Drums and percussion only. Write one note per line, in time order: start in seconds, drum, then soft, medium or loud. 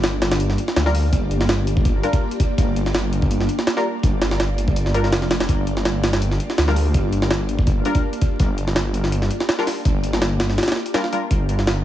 0.04 snare loud
0.04 closed hi-hat medium
0.22 snare loud
0.22 closed hi-hat medium
0.32 snare loud
0.32 closed hi-hat medium
0.40 closed hi-hat medium
0.50 snare soft
0.58 closed hi-hat medium
0.68 snare medium
0.76 snare loud
0.76 closed hi-hat medium
0.86 snare soft
0.95 open hi-hat medium
1.13 kick loud
1.13 closed hi-hat medium
1.31 closed hi-hat medium
1.41 snare medium
1.49 snare loud
1.49 closed hi-hat medium
1.67 closed hi-hat medium
1.77 kick medium
1.85 kick loud
1.85 closed hi-hat medium
2.04 closed hi-hat medium
2.13 kick loud
2.13 closed hi-hat medium
2.31 closed hi-hat medium
2.40 kick loud
2.40 closed hi-hat medium
2.58 kick loud
2.58 closed hi-hat medium
2.76 closed hi-hat medium
2.86 snare soft
2.94 snare loud
2.94 closed hi-hat medium
3.13 closed hi-hat medium
3.22 kick medium
3.31 closed hi-hat medium
3.41 snare soft
3.49 closed hi-hat medium
3.59 snare medium
3.67 snare loud
3.67 closed hi-hat medium
3.77 snare soft
4.03 kick loud
4.03 closed hi-hat medium
4.22 snare loud
4.22 closed hi-hat medium
4.31 snare medium
4.40 snare loud
4.40 closed hi-hat medium
4.58 closed hi-hat medium
4.68 kick medium
4.76 closed hi-hat medium
4.86 snare soft
4.94 closed hi-hat medium
5.04 snare soft
5.12 snare loud
5.12 closed hi-hat medium
5.22 snare soft
5.31 snare loud
5.31 closed hi-hat medium
5.40 snare loud
5.40 closed hi-hat medium
5.49 kick loud
5.49 closed hi-hat medium
5.67 closed hi-hat medium
5.77 snare soft
5.85 snare loud
5.85 closed hi-hat medium
6.04 snare loud
6.04 closed hi-hat medium
6.13 snare loud
6.13 closed hi-hat medium
6.22 closed hi-hat medium
6.31 snare soft
6.40 closed hi-hat medium
6.50 snare medium
6.58 snare loud
6.58 closed hi-hat medium
6.68 snare soft
6.76 open hi-hat medium
6.94 kick loud
6.94 closed hi-hat medium
7.13 closed hi-hat medium
7.22 snare medium
7.31 snare loud
7.31 closed hi-hat medium
7.49 closed hi-hat medium
7.59 kick loud
7.67 kick loud
7.67 closed hi-hat medium
7.85 closed hi-hat medium
7.95 kick loud
7.95 closed hi-hat medium
8.13 closed hi-hat medium
8.21 kick loud
8.21 closed hi-hat medium
8.39 kick loud
8.39 closed hi-hat medium
8.58 closed hi-hat medium
8.68 snare soft
8.76 snare loud
8.76 closed hi-hat medium
8.94 closed hi-hat medium
9.04 snare soft
9.12 closed hi-hat medium
9.22 snare soft
9.31 closed hi-hat medium
9.40 snare medium
9.49 snare loud
9.49 closed hi-hat medium
9.59 snare soft
9.67 snare medium
9.67 open hi-hat medium
9.85 kick loud
9.85 closed hi-hat medium
10.04 closed hi-hat medium
10.13 snare medium
10.22 snare loud
10.22 closed hi-hat medium
10.40 snare loud
10.40 closed hi-hat medium
10.50 snare soft
10.58 snare medium
10.58 closed hi-hat medium
10.63 snare medium
10.63 closed hi-hat medium
10.68 snare medium
10.68 closed hi-hat medium
10.72 snare medium
10.72 closed hi-hat medium
10.76 snare soft
10.86 closed hi-hat medium
10.94 snare loud
10.94 closed hi-hat medium
11.04 snare soft
11.13 closed hi-hat medium
11.31 kick loud
11.31 closed hi-hat medium
11.49 closed hi-hat medium
11.59 snare soft
11.67 snare loud
11.67 closed hi-hat medium